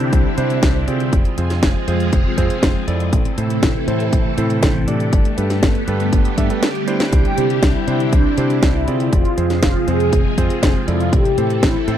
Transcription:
Already playing: D3 G3 C4 D4 E4 G4 C5
0.00 closed hi-hat
0.13 C2, kick, closed hi-hat
0.38 C3 D4 E4 G4 C5, closed hi-hat
0.50 closed hi-hat
0.63 C2, kick, snare, closed hi-hat
0.88 C3 C4 F4 G#4 D5, closed hi-hat
1.00 closed hi-hat
1.12 F1 C3 F3 G#3 F4 G#4, kick, closed hi-hat
1.25 closed hi-hat
1.38 F2 C4 F4 G#4 C5, closed hi-hat
1.50 snare, closed hi-hat
1.63 F1, kick, snare, closed hi-hat
1.88 F2 C4 F4 G#4 C5, closed hi-hat
2.00 closed hi-hat
2.13 F1, kick, closed hi-hat
2.38 F2 C4 F4 G#4 C5, kick, closed hi-hat
2.50 closed hi-hat
2.63 F1, kick, snare, closed hi-hat
2.88 F2 C4 E4 A4 D5, closed hi-hat
3.00 closed hi-hat
3.12 A1 C3 E3 A3 E4 A4, kick, closed hi-hat
3.25 closed hi-hat
3.38 A2 C4 E4 A4 C5, closed hi-hat
3.50 closed hi-hat
3.63 A1, kick, snare, closed hi-hat
3.88 A2 C4 E4 A4 C5, closed hi-hat
4.00 closed hi-hat
4.13 A1, kick, closed hi-hat
4.38 A2 C4 E4 A4 C5, closed hi-hat
4.50 closed hi-hat
4.63 A1, kick, snare, closed hi-hat
4.88 A2 D4 G4 A4 D5, closed hi-hat
5.00 closed hi-hat
5.13 G1 D3 G3 B3 G4, kick, closed hi-hat
5.25 closed hi-hat
5.38 G2 D4 G4 A4 B4, closed hi-hat
5.50 snare, closed hi-hat
5.63 G1, kick, snare, closed hi-hat
5.75 closed hi-hat
5.88 G2 D4 G4 A4 B4, closed hi-hat
6.00 closed hi-hat
6.13 G1, kick, closed hi-hat
6.25 closed hi-hat
6.38 G2 D4 G4 A4 E5, kick, closed hi-hat
6.50 D4 G4 A4 B4, closed hi-hat
6.63 snare, closed hi-hat
6.75 closed hi-hat
6.88 D4 E4 G4 C5, closed hi-hat
7.00 snare, closed hi-hat
7.12 C2 C4 E4 G4, kick, closed hi-hat
7.25 closed hi-hat
7.37 C3 D4 E4 G4 C5, closed hi-hat
7.50 closed hi-hat
7.63 C2 E4, kick, snare, closed hi-hat
7.87 C3 D4 E4 G4 C5, closed hi-hat
8.00 closed hi-hat
8.13 C2 D4, kick, closed hi-hat
8.37 C3 D4 E4 G4 C5, closed hi-hat
8.50 closed hi-hat
8.63 C2 E4, kick, snare, closed hi-hat
8.87 C3 C4 F4 G#4 D5, closed hi-hat
9.00 closed hi-hat
9.12 F1 C3 F3 G#3 F4 G#4, kick, closed hi-hat
9.25 closed hi-hat
9.38 F2 C4 F4 G#4 C5, closed hi-hat
9.50 snare, closed hi-hat
9.63 F1 F4, kick, snare, closed hi-hat
9.88 F2 C4 F4 G#4 C5, closed hi-hat
10.00 closed hi-hat
10.13 F1, kick, closed hi-hat
10.38 F2 C4 F4 G#4 C5, kick, closed hi-hat
10.50 closed hi-hat
10.63 F1 G#4, kick, snare, closed hi-hat
10.88 F2 C4 E4 F4 A4 D5, closed hi-hat
11.00 closed hi-hat
11.12 A1 E3 A3 E4 G4 A4, kick, closed hi-hat
11.25 closed hi-hat
11.38 A2 C4 E4 A4 C5, closed hi-hat
11.50 closed hi-hat
11.63 A1 E4, kick, snare, closed hi-hat
11.88 A2 C4 E4 A4 C5, closed hi-hat

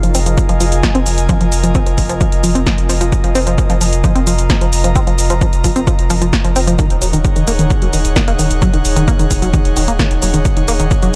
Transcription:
Already playing: F4 G#4 A#4 D#5 F5
0.03 F1 F3, closed hi-hat, shaker
0.13 F1 C4 G#5, open hi-hat, shaker
0.26 F1 F3, closed hi-hat, shaker
0.38 kick, closed hi-hat, shaker
0.49 F1 F3, closed hi-hat
0.60 F1 F3, open hi-hat, shaker
0.72 F1, closed hi-hat, shaker
0.83 F3, kick, snare, closed hi-hat, shaker
0.95 F1 C4, closed hi-hat
1.06 F1 F3, open hi-hat, shaker
1.18 F1, closed hi-hat, shaker
1.29 F3, kick, closed hi-hat, shaker
1.41 F1 F3, closed hi-hat
1.52 F1, open hi-hat, shaker
1.64 F1 F3, closed hi-hat, shaker
1.75 C4, kick, closed hi-hat, shaker
1.86 F1 F3, closed hi-hat, shaker
1.98 F1, kick, open hi-hat, shaker
2.09 F1 F3, closed hi-hat, shaker
2.21 F3, kick, closed hi-hat, shaker
2.32 F1, closed hi-hat
2.44 F1 F3, open hi-hat, shaker
2.55 F1 C4, closed hi-hat, shaker
2.67 F3, kick, snare, closed hi-hat, shaker
2.78 F1, closed hi-hat
2.89 F1 F3, open hi-hat, shaker
3.01 F1 F3, closed hi-hat, shaker
3.12 kick, closed hi-hat, shaker
3.24 F1 F3, closed hi-hat
3.35 F1 C4, open hi-hat, shaker
3.47 F1 F3, closed hi-hat, shaker
3.58 kick, closed hi-hat, shaker
3.70 F1 F3, closed hi-hat, shaker
3.81 F1 F3, open hi-hat, shaker
3.93 F1, closed hi-hat, shaker
3.97 A#5
4.04 F3, kick, closed hi-hat, shaker
4.15 F1 C4, closed hi-hat
4.27 F1 F3, open hi-hat, shaker
4.38 F1, closed hi-hat, shaker
4.50 F3, kick, snare, closed hi-hat, shaker
4.61 F1 F3, closed hi-hat
4.73 F1, open hi-hat, shaker
4.84 F1 F3, closed hi-hat, shaker
4.96 C4, kick, closed hi-hat, shaker
5.07 F1 F3, closed hi-hat
5.18 F1, open hi-hat, shaker
5.30 F1 F3, closed hi-hat, shaker
5.41 F3, kick, closed hi-hat, shaker
5.53 F1, closed hi-hat, shaker
5.64 F1 F3, kick, open hi-hat, shaker
5.76 F1 C4, closed hi-hat, shaker
5.87 F3, kick, closed hi-hat, shaker
5.99 F1, closed hi-hat
6.10 F1 F3, open hi-hat, shaker
6.22 F1 F3, closed hi-hat, shaker
6.33 kick, snare, closed hi-hat, shaker
6.44 F1 F3, closed hi-hat
6.56 F1 C4, open hi-hat, shaker
6.67 F1 F3, closed hi-hat, shaker
6.79 D#3 D#4, kick, closed hi-hat, shaker
6.85 C#5
6.90 D#1 F#5, closed hi-hat
6.96 G#4
7.02 D#1 F#3, open hi-hat, shaker
7.13 D#1 D#3, closed hi-hat, shaker
7.25 kick, closed hi-hat, shaker
7.36 D#1 D#3, closed hi-hat, shaker
7.47 D#1 A#3, open hi-hat, shaker
7.59 D#1 D#3, closed hi-hat, shaker
7.70 kick, closed hi-hat, shaker
7.82 D#1 F#3, closed hi-hat
7.93 D#1 D#3, open hi-hat, shaker
8.05 D#1, closed hi-hat, shaker
8.16 D#3, kick, snare, closed hi-hat, shaker
8.28 D#1 A#3, closed hi-hat
8.39 D#1 D#3, open hi-hat, shaker
8.51 D#1, closed hi-hat, shaker
8.62 F#3, kick, closed hi-hat, shaker
8.74 D#1 D#3, closed hi-hat
8.85 D#1, open hi-hat, shaker
8.96 D#1 D#3, closed hi-hat, shaker
9.08 A#3, kick, closed hi-hat, shaker
9.19 D#1 D#3, closed hi-hat, shaker
9.31 D#1, kick, open hi-hat, shaker
9.42 D#1 F#3, closed hi-hat, shaker
9.54 D#3, kick, closed hi-hat, shaker
9.65 D#1, closed hi-hat
9.77 D#1 D#3, open hi-hat, shaker
9.88 D#1 A#3, closed hi-hat, shaker
9.99 D#3, kick, snare, closed hi-hat, shaker
10.11 D#1, closed hi-hat
10.22 D#1 F#3, open hi-hat, shaker
10.34 D#1 D#3, closed hi-hat, shaker
10.45 kick, closed hi-hat, shaker
10.57 D#1 D#3, closed hi-hat
10.68 D#1 A#3, open hi-hat, shaker
10.80 D#1 D#3, closed hi-hat, shaker
10.91 kick, closed hi-hat, shaker
11.02 D#1 F#3, closed hi-hat, shaker

